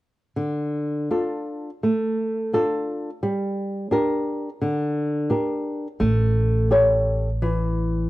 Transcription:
0, 0, Header, 1, 3, 480
1, 0, Start_track
1, 0, Key_signature, -1, "minor"
1, 0, Tempo, 734394
1, 244, Time_signature, 4, 2, 24, 8
1, 1201, Tempo, 696864
1, 4081, Tempo, 711744
1, 5482, End_track
2, 0, Start_track
2, 0, Title_t, "Nylon-string guitar"
2, 0, Program_c, 0, 24
2, 237, Note_on_c, 0, 50, 43
2, 708, Note_off_c, 0, 50, 0
2, 723, Note_on_c, 0, 62, 31
2, 723, Note_on_c, 0, 65, 29
2, 726, Note_on_c, 0, 69, 36
2, 1104, Note_off_c, 0, 62, 0
2, 1104, Note_off_c, 0, 65, 0
2, 1105, Note_off_c, 0, 69, 0
2, 1197, Note_on_c, 0, 57, 41
2, 1669, Note_off_c, 0, 57, 0
2, 1681, Note_on_c, 0, 62, 33
2, 1684, Note_on_c, 0, 65, 29
2, 1685, Note_on_c, 0, 69, 39
2, 2064, Note_off_c, 0, 62, 0
2, 2065, Note_off_c, 0, 65, 0
2, 2067, Note_off_c, 0, 69, 0
2, 2158, Note_on_c, 0, 55, 51
2, 2627, Note_off_c, 0, 55, 0
2, 2629, Note_on_c, 0, 62, 38
2, 2636, Note_on_c, 0, 67, 33
2, 2638, Note_on_c, 0, 70, 43
2, 3022, Note_off_c, 0, 62, 0
2, 3026, Note_off_c, 0, 67, 0
2, 3026, Note_off_c, 0, 70, 0
2, 3114, Note_on_c, 0, 50, 51
2, 3584, Note_off_c, 0, 50, 0
2, 3584, Note_on_c, 0, 62, 40
2, 3590, Note_on_c, 0, 67, 31
2, 3590, Note_on_c, 0, 70, 42
2, 3974, Note_off_c, 0, 62, 0
2, 3977, Note_off_c, 0, 70, 0
2, 3978, Note_off_c, 0, 67, 0
2, 4067, Note_on_c, 0, 57, 54
2, 4534, Note_off_c, 0, 57, 0
2, 4545, Note_on_c, 0, 67, 42
2, 4550, Note_on_c, 0, 69, 38
2, 4552, Note_on_c, 0, 73, 43
2, 4934, Note_off_c, 0, 67, 0
2, 4935, Note_off_c, 0, 69, 0
2, 4937, Note_off_c, 0, 73, 0
2, 5026, Note_on_c, 0, 52, 53
2, 5482, Note_off_c, 0, 52, 0
2, 5482, End_track
3, 0, Start_track
3, 0, Title_t, "Upright bass"
3, 0, Program_c, 1, 32
3, 4074, Note_on_c, 1, 33, 64
3, 5482, Note_off_c, 1, 33, 0
3, 5482, End_track
0, 0, End_of_file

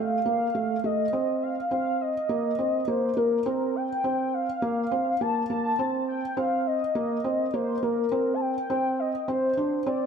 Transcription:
0, 0, Header, 1, 3, 480
1, 0, Start_track
1, 0, Tempo, 582524
1, 1890, Time_signature, 4, 2, 24, 8
1, 8291, End_track
2, 0, Start_track
2, 0, Title_t, "Soft synth lead"
2, 0, Program_c, 0, 80
2, 0, Note_on_c, 0, 77, 100
2, 699, Note_on_c, 0, 75, 93
2, 711, Note_off_c, 0, 77, 0
2, 1176, Note_on_c, 0, 77, 80
2, 1188, Note_off_c, 0, 75, 0
2, 1413, Note_off_c, 0, 77, 0
2, 1418, Note_on_c, 0, 77, 93
2, 1656, Note_on_c, 0, 75, 85
2, 1669, Note_off_c, 0, 77, 0
2, 2373, Note_on_c, 0, 72, 91
2, 2385, Note_off_c, 0, 75, 0
2, 2612, Note_on_c, 0, 70, 81
2, 2625, Note_off_c, 0, 72, 0
2, 3094, Note_on_c, 0, 79, 90
2, 3107, Note_off_c, 0, 70, 0
2, 3575, Note_on_c, 0, 77, 91
2, 3587, Note_off_c, 0, 79, 0
2, 4293, Note_on_c, 0, 81, 99
2, 4305, Note_off_c, 0, 77, 0
2, 4527, Note_off_c, 0, 81, 0
2, 4532, Note_on_c, 0, 81, 90
2, 4978, Note_off_c, 0, 81, 0
2, 5014, Note_on_c, 0, 79, 84
2, 5256, Note_on_c, 0, 77, 90
2, 5268, Note_off_c, 0, 79, 0
2, 5495, Note_on_c, 0, 75, 87
2, 5507, Note_off_c, 0, 77, 0
2, 6213, Note_on_c, 0, 72, 92
2, 6225, Note_off_c, 0, 75, 0
2, 6452, Note_on_c, 0, 70, 83
2, 6465, Note_off_c, 0, 72, 0
2, 6871, Note_on_c, 0, 81, 69
2, 6884, Note_off_c, 0, 70, 0
2, 6928, Note_on_c, 0, 79, 95
2, 6941, Note_off_c, 0, 81, 0
2, 7412, Note_on_c, 0, 75, 80
2, 7424, Note_off_c, 0, 79, 0
2, 7648, Note_off_c, 0, 75, 0
2, 7653, Note_on_c, 0, 72, 89
2, 8130, Note_on_c, 0, 74, 86
2, 8142, Note_off_c, 0, 72, 0
2, 8291, Note_off_c, 0, 74, 0
2, 8291, End_track
3, 0, Start_track
3, 0, Title_t, "Felt piano"
3, 0, Program_c, 1, 0
3, 0, Note_on_c, 1, 57, 83
3, 141, Note_off_c, 1, 57, 0
3, 210, Note_on_c, 1, 58, 64
3, 381, Note_off_c, 1, 58, 0
3, 451, Note_on_c, 1, 57, 75
3, 622, Note_off_c, 1, 57, 0
3, 691, Note_on_c, 1, 57, 62
3, 862, Note_off_c, 1, 57, 0
3, 929, Note_on_c, 1, 60, 66
3, 1271, Note_off_c, 1, 60, 0
3, 1410, Note_on_c, 1, 60, 67
3, 1752, Note_off_c, 1, 60, 0
3, 1889, Note_on_c, 1, 58, 77
3, 2060, Note_off_c, 1, 58, 0
3, 2130, Note_on_c, 1, 60, 62
3, 2301, Note_off_c, 1, 60, 0
3, 2370, Note_on_c, 1, 58, 74
3, 2541, Note_off_c, 1, 58, 0
3, 2610, Note_on_c, 1, 58, 67
3, 2781, Note_off_c, 1, 58, 0
3, 2849, Note_on_c, 1, 60, 71
3, 3191, Note_off_c, 1, 60, 0
3, 3330, Note_on_c, 1, 60, 71
3, 3672, Note_off_c, 1, 60, 0
3, 3808, Note_on_c, 1, 58, 78
3, 3980, Note_off_c, 1, 58, 0
3, 4050, Note_on_c, 1, 60, 64
3, 4221, Note_off_c, 1, 60, 0
3, 4293, Note_on_c, 1, 58, 72
3, 4463, Note_off_c, 1, 58, 0
3, 4531, Note_on_c, 1, 58, 67
3, 4702, Note_off_c, 1, 58, 0
3, 4771, Note_on_c, 1, 60, 69
3, 5112, Note_off_c, 1, 60, 0
3, 5248, Note_on_c, 1, 60, 77
3, 5590, Note_off_c, 1, 60, 0
3, 5729, Note_on_c, 1, 58, 84
3, 5900, Note_off_c, 1, 58, 0
3, 5968, Note_on_c, 1, 60, 68
3, 6140, Note_off_c, 1, 60, 0
3, 6210, Note_on_c, 1, 58, 78
3, 6381, Note_off_c, 1, 58, 0
3, 6449, Note_on_c, 1, 58, 69
3, 6620, Note_off_c, 1, 58, 0
3, 6688, Note_on_c, 1, 60, 75
3, 7030, Note_off_c, 1, 60, 0
3, 7168, Note_on_c, 1, 60, 76
3, 7510, Note_off_c, 1, 60, 0
3, 7647, Note_on_c, 1, 60, 78
3, 7819, Note_off_c, 1, 60, 0
3, 7889, Note_on_c, 1, 62, 67
3, 8060, Note_off_c, 1, 62, 0
3, 8128, Note_on_c, 1, 60, 81
3, 8291, Note_off_c, 1, 60, 0
3, 8291, End_track
0, 0, End_of_file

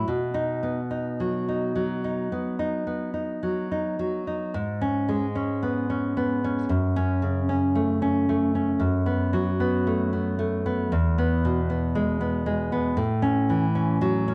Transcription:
0, 0, Header, 1, 2, 480
1, 0, Start_track
1, 0, Tempo, 1121495
1, 28, Time_signature, 4, 2, 24, 8
1, 1948, Tempo, 1077199
1, 2908, Tempo, 1052632
1, 4828, Tempo, 1032702
1, 6421, End_track
2, 0, Start_track
2, 0, Title_t, "Nylon-string guitar"
2, 0, Program_c, 0, 24
2, 33, Note_on_c, 0, 47, 47
2, 147, Note_on_c, 0, 63, 46
2, 270, Note_on_c, 0, 59, 30
2, 339, Note_off_c, 0, 63, 0
2, 389, Note_on_c, 0, 63, 33
2, 514, Note_on_c, 0, 54, 33
2, 630, Note_off_c, 0, 63, 0
2, 636, Note_on_c, 0, 63, 33
2, 746, Note_off_c, 0, 54, 0
2, 751, Note_on_c, 0, 54, 31
2, 870, Note_off_c, 0, 63, 0
2, 875, Note_on_c, 0, 63, 31
2, 978, Note_off_c, 0, 47, 0
2, 990, Note_off_c, 0, 59, 0
2, 995, Note_on_c, 0, 59, 35
2, 1106, Note_off_c, 0, 63, 0
2, 1111, Note_on_c, 0, 63, 33
2, 1224, Note_off_c, 0, 59, 0
2, 1229, Note_on_c, 0, 59, 31
2, 1338, Note_off_c, 0, 63, 0
2, 1344, Note_on_c, 0, 63, 31
2, 1463, Note_off_c, 0, 54, 0
2, 1468, Note_on_c, 0, 54, 33
2, 1586, Note_off_c, 0, 63, 0
2, 1591, Note_on_c, 0, 63, 33
2, 1704, Note_off_c, 0, 54, 0
2, 1709, Note_on_c, 0, 54, 33
2, 1824, Note_off_c, 0, 63, 0
2, 1829, Note_on_c, 0, 63, 31
2, 1944, Note_on_c, 0, 44, 50
2, 1947, Note_off_c, 0, 54, 0
2, 1947, Note_off_c, 0, 59, 0
2, 1947, Note_off_c, 0, 63, 0
2, 2065, Note_on_c, 0, 61, 46
2, 2185, Note_on_c, 0, 56, 41
2, 2259, Note_off_c, 0, 61, 0
2, 2305, Note_on_c, 0, 61, 41
2, 2426, Note_on_c, 0, 59, 36
2, 2541, Note_off_c, 0, 61, 0
2, 2547, Note_on_c, 0, 61, 38
2, 2662, Note_off_c, 0, 59, 0
2, 2668, Note_on_c, 0, 59, 40
2, 2785, Note_off_c, 0, 61, 0
2, 2790, Note_on_c, 0, 61, 38
2, 2888, Note_off_c, 0, 44, 0
2, 2902, Note_on_c, 0, 42, 44
2, 2906, Note_off_c, 0, 56, 0
2, 2907, Note_off_c, 0, 59, 0
2, 2908, Note_off_c, 0, 61, 0
2, 3025, Note_on_c, 0, 61, 54
2, 3143, Note_on_c, 0, 49, 32
2, 3217, Note_off_c, 0, 61, 0
2, 3265, Note_on_c, 0, 61, 39
2, 3385, Note_on_c, 0, 57, 43
2, 3500, Note_off_c, 0, 61, 0
2, 3506, Note_on_c, 0, 61, 42
2, 3625, Note_off_c, 0, 57, 0
2, 3630, Note_on_c, 0, 57, 41
2, 3744, Note_off_c, 0, 61, 0
2, 3749, Note_on_c, 0, 61, 36
2, 3843, Note_off_c, 0, 42, 0
2, 3861, Note_on_c, 0, 42, 54
2, 3862, Note_off_c, 0, 49, 0
2, 3867, Note_off_c, 0, 57, 0
2, 3867, Note_off_c, 0, 61, 0
2, 3982, Note_on_c, 0, 59, 50
2, 4105, Note_on_c, 0, 54, 40
2, 4177, Note_off_c, 0, 59, 0
2, 4228, Note_on_c, 0, 59, 42
2, 4350, Note_on_c, 0, 57, 42
2, 4463, Note_off_c, 0, 59, 0
2, 4469, Note_on_c, 0, 59, 41
2, 4582, Note_off_c, 0, 57, 0
2, 4587, Note_on_c, 0, 57, 47
2, 4706, Note_off_c, 0, 59, 0
2, 4711, Note_on_c, 0, 59, 46
2, 4810, Note_off_c, 0, 42, 0
2, 4829, Note_off_c, 0, 54, 0
2, 4829, Note_off_c, 0, 57, 0
2, 4830, Note_off_c, 0, 59, 0
2, 4830, Note_on_c, 0, 40, 52
2, 4952, Note_on_c, 0, 59, 53
2, 5074, Note_on_c, 0, 47, 41
2, 5143, Note_off_c, 0, 59, 0
2, 5191, Note_on_c, 0, 59, 41
2, 5310, Note_on_c, 0, 56, 49
2, 5422, Note_off_c, 0, 59, 0
2, 5427, Note_on_c, 0, 59, 44
2, 5540, Note_off_c, 0, 56, 0
2, 5546, Note_on_c, 0, 56, 45
2, 5660, Note_off_c, 0, 59, 0
2, 5666, Note_on_c, 0, 59, 43
2, 5767, Note_off_c, 0, 40, 0
2, 5779, Note_off_c, 0, 47, 0
2, 5781, Note_on_c, 0, 45, 57
2, 5785, Note_off_c, 0, 56, 0
2, 5785, Note_off_c, 0, 59, 0
2, 5900, Note_on_c, 0, 61, 51
2, 6027, Note_on_c, 0, 52, 40
2, 6096, Note_off_c, 0, 61, 0
2, 6145, Note_on_c, 0, 61, 47
2, 6265, Note_off_c, 0, 52, 0
2, 6267, Note_on_c, 0, 54, 49
2, 6386, Note_off_c, 0, 61, 0
2, 6392, Note_on_c, 0, 61, 48
2, 6421, Note_off_c, 0, 45, 0
2, 6421, Note_off_c, 0, 54, 0
2, 6421, Note_off_c, 0, 61, 0
2, 6421, End_track
0, 0, End_of_file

